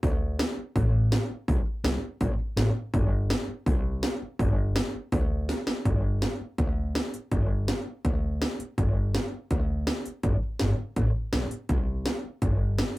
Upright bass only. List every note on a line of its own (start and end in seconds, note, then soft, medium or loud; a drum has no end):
0.03 0.41 D2 loud
0.57 muted upright bass stroke medium
0.76 1.14 A1 medium
1.30 muted upright bass stroke medium
1.48 1.61 C2 medium
1.66 muted upright bass stroke medium
1.84 2.00 C2 medium
2.03 muted upright bass stroke medium
2.21 2.37 A#1 medium
2.39 muted upright bass stroke medium
2.56 2.72 A1 medium
2.75 muted upright bass stroke medium
2.94 3.32 G1 loud
3.48 muted upright bass stroke medium
3.67 4.05 C2 loud
4.22 muted upright bass stroke medium
4.40 4.78 G1 loud
4.95 muted upright bass stroke medium
5.12 5.51 D2 medium
5.67 muted upright bass stroke medium
5.85 6.24 G1 medium
6.40 muted upright bass stroke medium
6.59 6.97 D2 medium
7.14 muted upright bass stroke medium
7.32 7.70 G1 medium
7.87 muted upright bass stroke medium
8.05 8.43 D2 medium
8.59 muted upright bass stroke medium
8.78 9.16 G1 medium
9.33 muted upright bass stroke medium
9.51 9.89 D2 medium
10.06 muted upright bass stroke medium
10.24 10.36 G1 medium
10.43 muted upright bass stroke medium
10.61 10.76 G1 medium
10.79 muted upright bass stroke medium
10.97 11.12 A1 medium
11.15 muted upright bass stroke medium
11.33 11.48 B1 medium
11.51 muted upright bass stroke medium
11.69 12.08 C2 medium
12.24 muted upright bass stroke medium
12.42 12.80 G1 medium